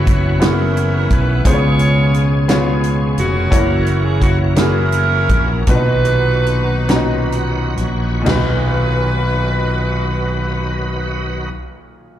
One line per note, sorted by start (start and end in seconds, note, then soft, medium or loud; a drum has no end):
0.00 1.07 F#1 medium
0.00 1.42 E3 medium
0.00 0.38 B3 medium
0.00 1.42 B3 medium
0.00 1.41 C#4 medium
0.00 0.36 E4 medium
0.00 0.39 E4 medium
0.00 0.36 F#4 medium
0.00 1.42 F#4 medium
0.00 0.36 C#5 medium
0.07 0.40 F#4 medium
0.07 kick medium
0.07 closed hi-hat soft
0.39 1.39 B3 medium
0.39 1.39 E4 medium
0.39 1.39 F#4 medium
0.39 1.40 G#4 medium
0.39 snare loud
0.39 closed hi-hat medium
0.44 1.43 C#4 medium
0.44 1.42 E4 medium
0.44 0.94 A#4 medium
0.77 closed hi-hat soft
0.95 1.10 A#4 medium
1.10 1.42 B1 medium
1.10 1.46 B4 medium
1.10 kick medium
1.10 closed hi-hat soft
1.45 3.14 C#2 medium
1.45 3.49 B2 medium
1.45 2.45 C#3 medium
1.45 3.48 G#3 medium
1.45 2.43 B3 medium
1.45 3.48 C#4 medium
1.45 2.43 F4 medium
1.45 2.45 F4 medium
1.45 1.52 F#4 soft
1.45 2.44 G#4 medium
1.45 2.45 G#4 medium
1.45 1.52 C5 medium
1.45 2.44 C#5 medium
1.45 kick medium
1.45 closed hi-hat medium
1.53 3.52 G#4 medium
1.53 2.47 C#5 medium
1.79 closed hi-hat soft
2.14 closed hi-hat soft
2.48 3.46 B3 medium
2.48 3.47 F4 medium
2.48 3.47 G#4 medium
2.48 3.47 C#5 medium
2.48 snare medium
2.48 closed hi-hat medium
2.84 closed hi-hat soft
3.18 3.49 F1 medium
3.18 4.18 A#3 medium
3.18 4.18 C#4 medium
3.18 4.01 F#4 medium
3.18 closed hi-hat soft
3.50 5.26 F#1 medium
3.50 5.64 E3 medium
3.50 3.57 A3 medium
3.50 5.64 A#3 medium
3.50 5.64 C#4 medium
3.50 4.51 E4 medium
3.50 4.51 F#4 medium
3.50 5.64 F#4 medium
3.50 4.51 C#5 medium
3.50 kick medium
3.50 closed hi-hat medium
3.56 4.54 A#3 medium
3.86 closed hi-hat soft
4.04 4.21 G#4 medium
4.22 4.38 F#4 medium
4.22 kick medium
4.22 closed hi-hat soft
4.56 5.62 A#3 medium
4.56 5.64 C#4 medium
4.56 5.62 E4 medium
4.56 5.65 E4 medium
4.56 5.62 F#4 medium
4.56 5.63 G#4 medium
4.56 5.65 A#4 medium
4.56 snare medium
4.56 closed hi-hat medium
4.92 closed hi-hat soft
5.29 5.65 A#1 medium
5.29 kick medium
5.29 closed hi-hat soft
5.67 7.74 B1 medium
5.67 6.82 A#2 medium
5.67 6.85 B2 medium
5.67 5.76 D3 soft
5.67 8.23 F#3 soft
5.67 5.75 D4 soft
5.67 7.75 D#4 medium
5.67 6.83 F#4 medium
5.67 8.23 F#4 medium
5.67 7.75 F#4 medium
5.67 8.23 B4 medium
5.67 6.83 B4 medium
5.67 7.80 B4 loud
5.67 kick medium
5.67 closed hi-hat medium
5.75 8.25 D#3 medium
5.75 6.86 D#4 medium
6.05 closed hi-hat soft
6.46 closed hi-hat soft
6.88 8.19 A#2 medium
6.88 6.97 C#4 soft
6.88 8.19 F#4 medium
6.88 8.19 A#5 medium
6.88 snare medium
6.88 closed hi-hat medium
6.95 8.22 D#4 medium
7.32 7.75 F#5 medium
7.32 closed hi-hat soft
7.77 8.23 A#1 medium
7.77 8.24 C#5 medium
7.77 closed hi-hat soft
8.21 11.48 B1 medium
8.21 11.45 A#2 medium
8.21 11.48 D#4 medium
8.26 11.50 B1 medium
8.26 11.49 D#3 medium
8.26 11.50 F#3 medium
8.26 11.49 F#4 medium
8.26 11.51 F#4 medium
8.26 11.49 B4 medium
8.26 11.51 B4 medium
8.26 11.53 B4 medium
8.26 snare medium
8.26 floor tom medium
8.26 crash medium